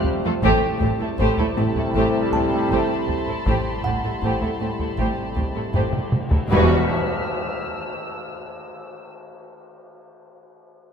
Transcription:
0.00 0.39 C3 loud
0.00 0.40 G3 medium
0.00 0.39 A3 loud
0.00 0.39 F4 medium
0.04 0.27 F2 medium
0.04 taiko low medium
0.25 0.32 F2 medium
0.25 0.32 A3 medium
0.25 0.32 F4 medium
0.25 0.32 A4 medium
0.42 0.51 A1 medium
0.42 0.66 A2 medium
0.42 0.51 A2 medium
0.42 3.30 C3 medium
0.42 3.30 G3 medium
0.42 3.31 A3 medium
0.42 0.61 A3 medium
0.42 3.31 E4 medium
0.42 0.61 G4 medium
0.42 0.61 C5 medium
0.42 6.10 A5 medium
0.42 taiko medium
0.80 0.89 A1 medium
0.80 0.89 A2 medium
0.80 0.88 A3 medium
0.80 1.04 A3 medium
0.80 0.89 C4 medium
0.80 0.89 G4 medium
0.80 taiko low medium
1.00 1.07 A2 medium
1.00 1.08 A3 medium
1.00 1.09 E4 medium
1.00 1.09 A4 soft
1.18 1.27 A1 medium
1.18 1.27 A2 medium
1.18 1.42 A2 medium
1.18 1.36 A3 medium
1.18 1.37 G4 medium
1.18 1.37 C5 medium
1.18 6.10 B5 soft
1.18 taiko medium
1.37 1.45 A2 medium
1.37 1.46 A3 medium
1.37 1.46 E4 soft
1.37 1.46 A4 medium
1.37 taiko low medium
1.57 1.65 A1 soft
1.57 1.65 A2 soft
1.57 1.80 A2 medium
1.57 1.65 A3 medium
1.57 1.65 C4 medium
1.57 1.67 G4 soft
1.75 1.83 A2 medium
1.75 1.84 A3 soft
1.75 1.84 E4 soft
1.75 1.85 A4 soft
1.75 taiko low soft
1.94 2.03 A1 medium
1.94 2.02 A2 medium
1.94 2.13 A3 medium
1.94 2.18 A3 soft
1.94 2.13 G4 medium
1.94 2.13 C5 medium
1.94 6.09 C6 soft
1.94 taiko medium
2.32 2.41 A1 soft
2.32 2.40 A2 soft
2.32 2.56 A2 soft
2.32 2.41 A3 soft
2.32 2.42 C4 soft
2.32 2.41 G4 soft
2.32 4.57 A5 soft
2.32 taiko low medium
2.51 2.59 A2 soft
2.51 2.60 A3 soft
2.51 2.61 E4 soft
2.51 2.60 A4 soft
2.70 2.78 A1 medium
2.70 2.78 A2 medium
2.70 2.93 A2 medium
2.70 2.89 A3 soft
2.70 2.89 G4 soft
2.70 2.89 C5 medium
2.70 taiko medium
3.08 3.31 A2 soft
3.08 taiko low medium
3.26 3.34 A2 soft
3.26 3.35 A3 soft
3.26 3.37 E4 soft
3.26 3.36 A4 soft
3.45 3.54 A1 medium
3.45 3.53 A2 medium
3.45 3.70 A2 medium
3.45 6.14 C3 medium
3.45 6.15 G3 medium
3.45 3.64 A3 soft
3.45 6.15 A3 soft
3.45 6.15 E4 medium
3.45 3.65 G4 medium
3.45 3.65 C5 soft
3.45 taiko medium
3.84 3.92 A1 soft
3.84 3.92 A2 soft
3.84 4.07 A3 soft
3.84 3.93 A3 soft
3.84 3.93 C4 soft
3.84 3.93 G4 soft
3.84 6.08 F#5 soft
3.84 taiko low medium
4.03 4.10 A2 soft
4.03 4.11 A3 soft
4.03 4.12 E4 soft
4.03 4.12 A4 soft
4.22 4.30 A1 soft
4.22 4.29 A2 medium
4.22 4.45 A2 soft
4.22 4.41 A3 soft
4.22 4.41 G4 soft
4.22 4.41 C5 medium
4.22 taiko medium
4.40 4.48 A2 soft
4.40 4.50 A3 soft
4.40 4.50 E4 soft
4.40 4.50 A4 soft
4.40 taiko low soft
4.60 4.68 A1 soft
4.60 4.67 A2 soft
4.60 4.84 A2 medium
4.60 4.68 A3 soft
4.60 4.68 C4 soft
4.60 4.69 G4 soft
4.79 4.87 A2 soft
4.79 4.87 A3 soft
4.79 4.87 E4 soft
4.79 4.89 A4 soft
4.79 taiko low soft
4.98 5.06 A1 soft
4.98 5.06 A2 soft
4.98 5.22 A3 soft
4.98 5.17 A3 soft
4.98 5.17 G4 medium
4.98 5.16 C5 soft
4.98 taiko medium
5.36 5.44 A1 soft
5.36 5.44 A2 soft
5.36 5.60 A2 soft
5.36 5.44 A3 soft
5.36 5.44 C4 soft
5.36 5.45 G4 soft
5.36 taiko low medium
5.55 5.63 A2 soft
5.55 5.64 A3 soft
5.55 5.63 E4 soft
5.55 5.64 A4 soft
5.74 5.82 A1 soft
5.74 5.97 A2 medium
5.74 5.82 A2 soft
5.74 5.92 A3 soft
5.74 5.92 G4 soft
5.74 5.92 C5 soft
5.74 taiko low-mid medium
5.93 taiko mid medium
6.12 6.35 A2 soft
6.12 taiko mid medium
6.31 6.39 A2 soft
6.31 6.39 A3 soft
6.31 6.40 E4 soft
6.31 6.39 A4 soft
6.31 taiko low medium
6.50 6.93 E1 medium
6.50 6.93 E2 medium
6.50 6.85 B2 medium
6.50 6.85 E3 medium
6.50 6.93 G3 medium
6.50 6.86 G3 medium
6.50 6.85 F#4 medium
6.50 6.93 F#4 medium
6.50 6.93 B4 medium
6.50 9.12 E6 medium
6.50 8.36 F6 medium
6.50 7.60 B6 medium
6.50 tam-tam medium

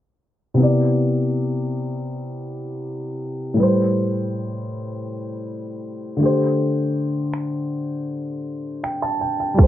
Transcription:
0.54 3.52 C3 medium
0.54 3.54 B3 medium
0.60 3.55 E4 medium
0.60 3.57 D5 medium
3.54 6.15 A2 medium
3.54 6.16 G3 medium
3.60 6.18 B4 medium
3.60 6.19 C5 medium
6.17 9.15 D3 medium
6.17 9.16 A3 medium
6.23 9.18 G4 medium
6.23 9.19 C5 medium
7.34 finger snap medium
8.84 9.01 G5 medium
8.84 finger snap loud
9.02 9.20 A5 medium
9.21 9.38 G5 medium
9.40 9.67 G5 medium
9.54 9.67 G3 medium
9.54 9.67 F4 medium
9.59 9.67 A4 medium
9.59 kick loud
9.63 9.67 C5 medium

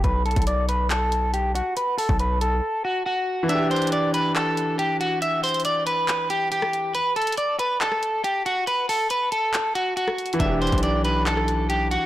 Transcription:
0.04 0.35 B1 loud
0.04 0.22 B4 medium
0.04 kick loud
0.04 closed hi-hat medium
0.26 0.43 A4 medium
0.26 closed hi-hat soft
0.31 closed hi-hat medium
0.36 1.62 B1 loud
0.36 kick loud
0.36 closed hi-hat medium
0.42 closed hi-hat medium
0.47 0.65 D5 medium
0.47 closed hi-hat medium
0.69 0.86 B4 medium
0.69 closed hi-hat medium
0.90 1.31 A4 medium
0.90 clap loud
0.90 closed hi-hat medium
1.12 closed hi-hat medium
1.34 1.51 G4 medium
1.34 closed hi-hat medium
1.55 1.73 F#4 medium
1.55 closed hi-hat medium
1.77 1.94 B4 medium
1.77 closed hi-hat medium
1.98 2.16 A4 loud
1.98 open hi-hat medium
2.09 2.61 B1 loud
2.09 kick loud
2.19 2.37 B4 medium
2.19 closed hi-hat medium
2.41 2.82 A4 medium
2.41 closed hi-hat medium
2.85 3.02 F#4 medium
3.06 3.47 F#4 medium
3.43 6.87 E3 medium
3.49 6.90 D4 medium
3.49 3.67 E5 medium
3.49 closed hi-hat medium
3.55 6.93 G4 medium
3.71 3.89 C5 medium
3.71 closed hi-hat soft
3.76 closed hi-hat medium
3.82 closed hi-hat medium
3.87 closed hi-hat medium
3.92 4.10 D5 medium
3.92 closed hi-hat medium
4.14 4.32 B4 medium
4.14 closed hi-hat medium
4.36 4.76 A4 medium
4.36 clap loud
4.36 closed hi-hat medium
4.57 closed hi-hat medium
4.79 4.96 G4 medium
4.79 closed hi-hat medium
5.01 5.18 F#4 medium
5.01 closed hi-hat medium
5.22 5.40 E5 medium
5.22 closed hi-hat medium
5.44 5.61 C5 medium
5.44 closed hi-hat soft
5.44 open hi-hat medium
5.49 closed hi-hat medium
5.54 closed hi-hat medium
5.60 closed hi-hat medium
5.65 5.83 D5 medium
5.65 closed hi-hat medium
5.87 6.27 B4 medium
5.87 closed hi-hat medium
6.08 clap loud
6.08 closed hi-hat medium
6.30 6.48 G4 medium
6.30 closed hi-hat medium
6.52 6.92 G4 medium
6.52 closed hi-hat medium
6.62 cross-stick loud
6.73 closed hi-hat medium
6.95 7.12 B4 medium
6.95 closed hi-hat medium
7.16 7.34 A4 medium
7.16 closed hi-hat soft
7.22 closed hi-hat medium
7.27 closed hi-hat medium
7.32 closed hi-hat medium
7.37 7.55 D5 medium
7.37 closed hi-hat medium
7.59 7.77 B4 medium
7.59 closed hi-hat medium
7.81 8.22 A4 medium
7.81 clap loud
7.81 closed hi-hat medium
7.92 cross-stick medium
8.03 closed hi-hat medium
8.24 8.42 G4 medium
8.24 closed hi-hat medium
8.46 8.63 F#4 medium
8.46 closed hi-hat medium
8.67 8.85 B4 medium
8.67 closed hi-hat medium
8.89 9.07 A4 medium
8.89 open hi-hat medium
9.10 9.28 B4 medium
9.10 closed hi-hat medium
9.32 9.73 A4 medium
9.32 closed hi-hat medium
9.54 clap loud
9.54 closed hi-hat medium
9.75 9.93 F#4 medium
9.75 closed hi-hat medium
9.97 10.37 F#4 medium
9.97 closed hi-hat medium
10.08 cross-stick loud
10.18 closed hi-hat medium
10.26 closed hi-hat medium
10.33 12.06 E3 medium
10.33 closed hi-hat medium
10.39 10.71 E1 loud
10.39 12.06 D4 medium
10.39 10.58 E5 medium
10.39 kick loud
10.39 closed hi-hat medium
10.45 12.06 G4 medium
10.62 10.79 C5 medium
10.62 closed hi-hat soft
10.67 closed hi-hat medium
10.72 11.98 B1 loud
10.72 kick medium
10.72 closed hi-hat medium
10.78 closed hi-hat medium
10.83 11.01 D5 medium
10.83 closed hi-hat medium
11.05 11.22 B4 medium
11.05 closed hi-hat medium
11.26 11.67 A4 medium
11.26 clap loud
11.26 closed hi-hat medium
11.37 cross-stick medium
11.48 closed hi-hat medium
11.70 11.87 G4 medium
11.70 closed hi-hat medium
11.91 12.06 F#4 medium
11.91 closed hi-hat medium

